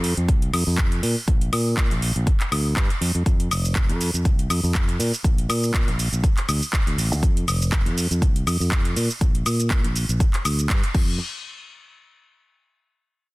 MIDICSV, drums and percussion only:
0, 0, Header, 1, 2, 480
1, 0, Start_track
1, 0, Tempo, 495868
1, 1237, Time_signature, 4, 2, 24, 8
1, 12922, End_track
2, 0, Start_track
2, 0, Title_t, "Drums"
2, 37, Note_on_c, 9, 46, 112
2, 134, Note_off_c, 9, 46, 0
2, 168, Note_on_c, 9, 42, 37
2, 265, Note_off_c, 9, 42, 0
2, 276, Note_on_c, 9, 36, 126
2, 278, Note_on_c, 9, 42, 72
2, 373, Note_off_c, 9, 36, 0
2, 374, Note_off_c, 9, 42, 0
2, 408, Note_on_c, 9, 42, 50
2, 505, Note_off_c, 9, 42, 0
2, 518, Note_on_c, 9, 46, 108
2, 518, Note_on_c, 9, 76, 64
2, 615, Note_off_c, 9, 46, 0
2, 615, Note_off_c, 9, 76, 0
2, 754, Note_on_c, 9, 39, 124
2, 756, Note_on_c, 9, 36, 116
2, 757, Note_on_c, 9, 42, 79
2, 850, Note_off_c, 9, 39, 0
2, 853, Note_off_c, 9, 36, 0
2, 854, Note_off_c, 9, 42, 0
2, 890, Note_on_c, 9, 42, 51
2, 987, Note_off_c, 9, 42, 0
2, 998, Note_on_c, 9, 46, 113
2, 1095, Note_off_c, 9, 46, 0
2, 1236, Note_on_c, 9, 36, 127
2, 1239, Note_on_c, 9, 42, 79
2, 1333, Note_off_c, 9, 36, 0
2, 1336, Note_off_c, 9, 42, 0
2, 1369, Note_on_c, 9, 42, 49
2, 1465, Note_off_c, 9, 42, 0
2, 1479, Note_on_c, 9, 46, 107
2, 1479, Note_on_c, 9, 76, 66
2, 1575, Note_off_c, 9, 46, 0
2, 1575, Note_off_c, 9, 76, 0
2, 1715, Note_on_c, 9, 39, 120
2, 1716, Note_on_c, 9, 36, 123
2, 1719, Note_on_c, 9, 42, 75
2, 1812, Note_off_c, 9, 39, 0
2, 1813, Note_off_c, 9, 36, 0
2, 1816, Note_off_c, 9, 42, 0
2, 1851, Note_on_c, 9, 42, 49
2, 1948, Note_off_c, 9, 42, 0
2, 1959, Note_on_c, 9, 46, 100
2, 2055, Note_off_c, 9, 46, 0
2, 2090, Note_on_c, 9, 42, 35
2, 2187, Note_off_c, 9, 42, 0
2, 2196, Note_on_c, 9, 36, 123
2, 2199, Note_on_c, 9, 42, 70
2, 2293, Note_off_c, 9, 36, 0
2, 2296, Note_off_c, 9, 42, 0
2, 2326, Note_on_c, 9, 39, 36
2, 2329, Note_on_c, 9, 42, 48
2, 2422, Note_off_c, 9, 39, 0
2, 2426, Note_off_c, 9, 42, 0
2, 2440, Note_on_c, 9, 46, 102
2, 2440, Note_on_c, 9, 76, 66
2, 2537, Note_off_c, 9, 46, 0
2, 2537, Note_off_c, 9, 76, 0
2, 2676, Note_on_c, 9, 36, 111
2, 2676, Note_on_c, 9, 39, 116
2, 2680, Note_on_c, 9, 42, 80
2, 2773, Note_off_c, 9, 36, 0
2, 2773, Note_off_c, 9, 39, 0
2, 2777, Note_off_c, 9, 42, 0
2, 2811, Note_on_c, 9, 42, 50
2, 2907, Note_off_c, 9, 42, 0
2, 2920, Note_on_c, 9, 46, 115
2, 3017, Note_off_c, 9, 46, 0
2, 3051, Note_on_c, 9, 42, 37
2, 3147, Note_off_c, 9, 42, 0
2, 3157, Note_on_c, 9, 36, 119
2, 3159, Note_on_c, 9, 42, 77
2, 3162, Note_on_c, 9, 82, 35
2, 3253, Note_off_c, 9, 36, 0
2, 3256, Note_off_c, 9, 42, 0
2, 3259, Note_off_c, 9, 82, 0
2, 3290, Note_on_c, 9, 42, 52
2, 3387, Note_off_c, 9, 42, 0
2, 3401, Note_on_c, 9, 46, 98
2, 3401, Note_on_c, 9, 76, 68
2, 3404, Note_on_c, 9, 82, 77
2, 3498, Note_off_c, 9, 46, 0
2, 3498, Note_off_c, 9, 76, 0
2, 3501, Note_off_c, 9, 82, 0
2, 3534, Note_on_c, 9, 82, 45
2, 3631, Note_off_c, 9, 82, 0
2, 3635, Note_on_c, 9, 39, 117
2, 3636, Note_on_c, 9, 36, 120
2, 3639, Note_on_c, 9, 42, 76
2, 3642, Note_on_c, 9, 82, 34
2, 3732, Note_off_c, 9, 39, 0
2, 3733, Note_off_c, 9, 36, 0
2, 3736, Note_off_c, 9, 42, 0
2, 3739, Note_off_c, 9, 82, 0
2, 3770, Note_on_c, 9, 42, 52
2, 3867, Note_off_c, 9, 42, 0
2, 3879, Note_on_c, 9, 46, 100
2, 3882, Note_on_c, 9, 82, 77
2, 3976, Note_off_c, 9, 46, 0
2, 3979, Note_off_c, 9, 82, 0
2, 4011, Note_on_c, 9, 42, 38
2, 4014, Note_on_c, 9, 82, 48
2, 4107, Note_off_c, 9, 42, 0
2, 4111, Note_off_c, 9, 82, 0
2, 4116, Note_on_c, 9, 36, 117
2, 4119, Note_on_c, 9, 42, 72
2, 4122, Note_on_c, 9, 82, 32
2, 4213, Note_off_c, 9, 36, 0
2, 4216, Note_off_c, 9, 42, 0
2, 4219, Note_off_c, 9, 82, 0
2, 4250, Note_on_c, 9, 42, 50
2, 4347, Note_off_c, 9, 42, 0
2, 4358, Note_on_c, 9, 46, 101
2, 4358, Note_on_c, 9, 76, 65
2, 4361, Note_on_c, 9, 82, 76
2, 4455, Note_off_c, 9, 46, 0
2, 4455, Note_off_c, 9, 76, 0
2, 4458, Note_off_c, 9, 82, 0
2, 4493, Note_on_c, 9, 82, 43
2, 4590, Note_off_c, 9, 82, 0
2, 4596, Note_on_c, 9, 36, 108
2, 4596, Note_on_c, 9, 39, 110
2, 4600, Note_on_c, 9, 42, 75
2, 4603, Note_on_c, 9, 82, 35
2, 4693, Note_off_c, 9, 36, 0
2, 4693, Note_off_c, 9, 39, 0
2, 4696, Note_off_c, 9, 42, 0
2, 4700, Note_off_c, 9, 82, 0
2, 4731, Note_on_c, 9, 42, 51
2, 4828, Note_off_c, 9, 42, 0
2, 4839, Note_on_c, 9, 46, 112
2, 4843, Note_on_c, 9, 82, 81
2, 4936, Note_off_c, 9, 46, 0
2, 4939, Note_off_c, 9, 82, 0
2, 4975, Note_on_c, 9, 82, 48
2, 5071, Note_off_c, 9, 82, 0
2, 5076, Note_on_c, 9, 36, 115
2, 5081, Note_on_c, 9, 42, 78
2, 5084, Note_on_c, 9, 82, 37
2, 5173, Note_off_c, 9, 36, 0
2, 5177, Note_off_c, 9, 42, 0
2, 5181, Note_off_c, 9, 82, 0
2, 5212, Note_on_c, 9, 42, 51
2, 5308, Note_off_c, 9, 42, 0
2, 5321, Note_on_c, 9, 46, 99
2, 5321, Note_on_c, 9, 76, 66
2, 5324, Note_on_c, 9, 82, 81
2, 5417, Note_off_c, 9, 46, 0
2, 5417, Note_off_c, 9, 76, 0
2, 5421, Note_off_c, 9, 82, 0
2, 5455, Note_on_c, 9, 82, 49
2, 5552, Note_off_c, 9, 82, 0
2, 5557, Note_on_c, 9, 36, 122
2, 5557, Note_on_c, 9, 39, 118
2, 5561, Note_on_c, 9, 42, 80
2, 5564, Note_on_c, 9, 82, 35
2, 5653, Note_off_c, 9, 36, 0
2, 5654, Note_off_c, 9, 39, 0
2, 5658, Note_off_c, 9, 42, 0
2, 5661, Note_off_c, 9, 82, 0
2, 5692, Note_on_c, 9, 42, 51
2, 5789, Note_off_c, 9, 42, 0
2, 5801, Note_on_c, 9, 46, 96
2, 5804, Note_on_c, 9, 82, 76
2, 5898, Note_off_c, 9, 46, 0
2, 5901, Note_off_c, 9, 82, 0
2, 5932, Note_on_c, 9, 42, 37
2, 5935, Note_on_c, 9, 82, 47
2, 6029, Note_off_c, 9, 42, 0
2, 6032, Note_off_c, 9, 82, 0
2, 6037, Note_on_c, 9, 36, 112
2, 6040, Note_on_c, 9, 42, 74
2, 6043, Note_on_c, 9, 82, 33
2, 6133, Note_off_c, 9, 36, 0
2, 6137, Note_off_c, 9, 42, 0
2, 6140, Note_off_c, 9, 82, 0
2, 6167, Note_on_c, 9, 39, 35
2, 6171, Note_on_c, 9, 42, 49
2, 6264, Note_off_c, 9, 39, 0
2, 6268, Note_off_c, 9, 42, 0
2, 6279, Note_on_c, 9, 46, 101
2, 6279, Note_on_c, 9, 76, 66
2, 6283, Note_on_c, 9, 82, 79
2, 6376, Note_off_c, 9, 46, 0
2, 6376, Note_off_c, 9, 76, 0
2, 6379, Note_off_c, 9, 82, 0
2, 6415, Note_on_c, 9, 82, 47
2, 6511, Note_off_c, 9, 82, 0
2, 6516, Note_on_c, 9, 36, 110
2, 6517, Note_on_c, 9, 39, 111
2, 6521, Note_on_c, 9, 42, 76
2, 6524, Note_on_c, 9, 82, 34
2, 6613, Note_off_c, 9, 36, 0
2, 6614, Note_off_c, 9, 39, 0
2, 6618, Note_off_c, 9, 42, 0
2, 6621, Note_off_c, 9, 82, 0
2, 6652, Note_on_c, 9, 42, 50
2, 6749, Note_off_c, 9, 42, 0
2, 6761, Note_on_c, 9, 46, 103
2, 6764, Note_on_c, 9, 82, 82
2, 6858, Note_off_c, 9, 46, 0
2, 6861, Note_off_c, 9, 82, 0
2, 6896, Note_on_c, 9, 82, 47
2, 6993, Note_off_c, 9, 82, 0
2, 6997, Note_on_c, 9, 36, 119
2, 7002, Note_on_c, 9, 42, 83
2, 7005, Note_on_c, 9, 82, 36
2, 7093, Note_off_c, 9, 36, 0
2, 7099, Note_off_c, 9, 42, 0
2, 7102, Note_off_c, 9, 82, 0
2, 7134, Note_on_c, 9, 42, 57
2, 7230, Note_off_c, 9, 42, 0
2, 7241, Note_on_c, 9, 46, 100
2, 7241, Note_on_c, 9, 76, 67
2, 7244, Note_on_c, 9, 82, 78
2, 7338, Note_off_c, 9, 46, 0
2, 7338, Note_off_c, 9, 76, 0
2, 7341, Note_off_c, 9, 82, 0
2, 7376, Note_on_c, 9, 82, 51
2, 7473, Note_off_c, 9, 82, 0
2, 7476, Note_on_c, 9, 36, 121
2, 7477, Note_on_c, 9, 39, 110
2, 7481, Note_on_c, 9, 42, 82
2, 7573, Note_off_c, 9, 36, 0
2, 7574, Note_off_c, 9, 39, 0
2, 7578, Note_off_c, 9, 42, 0
2, 7611, Note_on_c, 9, 42, 52
2, 7708, Note_off_c, 9, 42, 0
2, 7721, Note_on_c, 9, 46, 99
2, 7725, Note_on_c, 9, 82, 83
2, 7818, Note_off_c, 9, 46, 0
2, 7821, Note_off_c, 9, 82, 0
2, 7852, Note_on_c, 9, 42, 39
2, 7855, Note_on_c, 9, 82, 47
2, 7949, Note_off_c, 9, 42, 0
2, 7952, Note_off_c, 9, 82, 0
2, 7957, Note_on_c, 9, 36, 108
2, 7962, Note_on_c, 9, 42, 78
2, 7965, Note_on_c, 9, 82, 34
2, 8053, Note_off_c, 9, 36, 0
2, 8059, Note_off_c, 9, 42, 0
2, 8062, Note_off_c, 9, 82, 0
2, 8092, Note_on_c, 9, 42, 52
2, 8188, Note_off_c, 9, 42, 0
2, 8200, Note_on_c, 9, 46, 96
2, 8200, Note_on_c, 9, 76, 65
2, 8203, Note_on_c, 9, 82, 79
2, 8297, Note_off_c, 9, 46, 0
2, 8297, Note_off_c, 9, 76, 0
2, 8300, Note_off_c, 9, 82, 0
2, 8334, Note_on_c, 9, 82, 47
2, 8431, Note_off_c, 9, 82, 0
2, 8436, Note_on_c, 9, 36, 106
2, 8436, Note_on_c, 9, 39, 111
2, 8440, Note_on_c, 9, 42, 84
2, 8443, Note_on_c, 9, 82, 37
2, 8533, Note_off_c, 9, 36, 0
2, 8533, Note_off_c, 9, 39, 0
2, 8537, Note_off_c, 9, 42, 0
2, 8540, Note_off_c, 9, 82, 0
2, 8569, Note_on_c, 9, 42, 54
2, 8666, Note_off_c, 9, 42, 0
2, 8678, Note_on_c, 9, 46, 105
2, 8681, Note_on_c, 9, 82, 86
2, 8775, Note_off_c, 9, 46, 0
2, 8778, Note_off_c, 9, 82, 0
2, 8813, Note_on_c, 9, 82, 47
2, 8910, Note_off_c, 9, 82, 0
2, 8916, Note_on_c, 9, 36, 115
2, 8918, Note_on_c, 9, 42, 85
2, 8921, Note_on_c, 9, 82, 35
2, 9013, Note_off_c, 9, 36, 0
2, 9015, Note_off_c, 9, 42, 0
2, 9018, Note_off_c, 9, 82, 0
2, 9049, Note_on_c, 9, 42, 52
2, 9146, Note_off_c, 9, 42, 0
2, 9158, Note_on_c, 9, 46, 100
2, 9158, Note_on_c, 9, 76, 59
2, 9161, Note_on_c, 9, 82, 80
2, 9254, Note_off_c, 9, 46, 0
2, 9254, Note_off_c, 9, 76, 0
2, 9258, Note_off_c, 9, 82, 0
2, 9290, Note_on_c, 9, 42, 41
2, 9293, Note_on_c, 9, 82, 49
2, 9386, Note_off_c, 9, 42, 0
2, 9390, Note_off_c, 9, 82, 0
2, 9395, Note_on_c, 9, 39, 121
2, 9396, Note_on_c, 9, 36, 118
2, 9399, Note_on_c, 9, 42, 81
2, 9402, Note_on_c, 9, 82, 33
2, 9492, Note_off_c, 9, 39, 0
2, 9493, Note_off_c, 9, 36, 0
2, 9496, Note_off_c, 9, 42, 0
2, 9499, Note_off_c, 9, 82, 0
2, 9529, Note_on_c, 9, 42, 55
2, 9626, Note_off_c, 9, 42, 0
2, 9638, Note_on_c, 9, 46, 97
2, 9641, Note_on_c, 9, 82, 77
2, 9735, Note_off_c, 9, 46, 0
2, 9738, Note_off_c, 9, 82, 0
2, 9770, Note_on_c, 9, 42, 40
2, 9773, Note_on_c, 9, 82, 47
2, 9866, Note_off_c, 9, 42, 0
2, 9870, Note_off_c, 9, 82, 0
2, 9876, Note_on_c, 9, 36, 114
2, 9879, Note_on_c, 9, 42, 76
2, 9883, Note_on_c, 9, 82, 33
2, 9973, Note_off_c, 9, 36, 0
2, 9976, Note_off_c, 9, 42, 0
2, 9979, Note_off_c, 9, 82, 0
2, 10005, Note_on_c, 9, 39, 36
2, 10009, Note_on_c, 9, 42, 54
2, 10102, Note_off_c, 9, 39, 0
2, 10106, Note_off_c, 9, 42, 0
2, 10118, Note_on_c, 9, 46, 99
2, 10118, Note_on_c, 9, 76, 61
2, 10121, Note_on_c, 9, 82, 80
2, 10215, Note_off_c, 9, 46, 0
2, 10215, Note_off_c, 9, 76, 0
2, 10218, Note_off_c, 9, 82, 0
2, 10250, Note_on_c, 9, 42, 38
2, 10253, Note_on_c, 9, 82, 44
2, 10347, Note_off_c, 9, 42, 0
2, 10350, Note_off_c, 9, 82, 0
2, 10354, Note_on_c, 9, 39, 121
2, 10355, Note_on_c, 9, 36, 107
2, 10358, Note_on_c, 9, 42, 85
2, 10451, Note_off_c, 9, 39, 0
2, 10452, Note_off_c, 9, 36, 0
2, 10455, Note_off_c, 9, 42, 0
2, 10489, Note_on_c, 9, 42, 55
2, 10586, Note_off_c, 9, 42, 0
2, 10595, Note_on_c, 9, 36, 107
2, 10599, Note_on_c, 9, 49, 90
2, 10692, Note_off_c, 9, 36, 0
2, 10696, Note_off_c, 9, 49, 0
2, 12922, End_track
0, 0, End_of_file